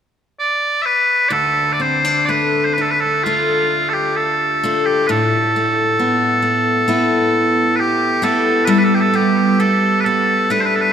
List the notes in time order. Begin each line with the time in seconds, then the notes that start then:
0.39 D5
0.82 B4 E5
1.29 D2 A4 D5
1.73 D5
1.80 C4 C5
2.05 D4
2.25 A3 D5
2.29 B4
2.65 C5
2.74 B4
2.78 D4 A4
2.91 B4
3.00 A4
3.23 A3 D4 F4
3.89 A4
3.93 G4
4.16 A4
4.64 A3 D4 F4
4.85 G4
5.07 A2 A4 B4
5.56 A3
5.99 B3
6.42 A3
6.88 A3 B3 E4
7.76 G4 B4
8.22 A3 B3 E4 A4
8.65 G3 B4
8.69 A4
8.78 B4
8.84 A4
8.95 G4
9.01 A4
9.14 B3 G4
9.60 A3 A4
10.00 A4 B4
10.06 B3
10.50 A3 D4 B4
10.61 C5
10.66 B4
10.76 A4
10.81 B4